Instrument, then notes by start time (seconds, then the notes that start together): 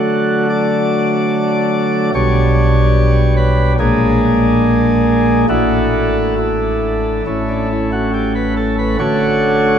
pipe organ
Already playing: D3 F#3 A3 D4 F#4
0.50 D5
2.14 B1 B2 G3 D4 C#5
3.37 B4
3.79 A#1 A#2 G#3 A#3 D4 G#4
5.49 A1 A2 A3 D4 E4 F#4
6.38 E4
7.27 A1 A2 A3 C#4 E4
7.49 D4
7.71 E4
7.92 F#4
8.14 G4
8.35 B4
8.57 A4
8.79 B4
8.99 D3 A3 D4 F#4 C#5